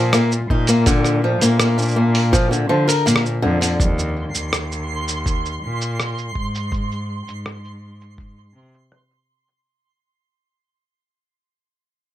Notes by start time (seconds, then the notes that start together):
Already playing: A#2 F3
0.13 A#3, cross-stick, open hi-hat, cabasa
0.32 cabasa
0.50 A#2 D#4, kick
0.67 A#3, open hi-hat, cabasa
0.86 D3, kick, open hi-hat, cabasa
1.05 cross-stick, cabasa
1.24 F3
1.41 A#2 A#3, open hi-hat, cabasa
1.59 A#3, cross-stick, open hi-hat, cabasa
1.78 D4, cabasa
1.82 cabasa
1.85 cabasa
1.88 cabasa
1.91 cabasa
1.94 A#3, cabasa
2.15 open hi-hat
2.33 F3, kick, open hi-hat, cabasa
2.51 D3, cabasa
2.69 D3 F3
2.88 A#4, open hi-hat, cabasa
3.06 A#2 A#3, open hi-hat, cabasa
3.16 cross-stick
3.26 cabasa
3.42 F2 D3
3.61 D3, open hi-hat, cabasa
3.79 D#2 C6, kick, cabasa
3.99 cabasa
4.34 D#2, cabasa
4.53 cross-stick, cabasa
4.72 cabasa
5.08 cabasa
5.26 kick, cabasa
5.46 cabasa
5.62 A#2
5.82 cabasa
6.00 cross-stick, cabasa
6.18 cabasa
6.35 G#2, kick
6.55 cabasa
6.72 kick, cabasa
6.91 cabasa
7.27 G#2, cabasa
7.46 cross-stick, cabasa
7.65 cabasa
8.01 cabasa
8.18 kick, cabasa
8.38 cabasa
8.55 C3
8.74 cabasa
8.92 cross-stick, cabasa
9.11 cabasa
9.48 cabasa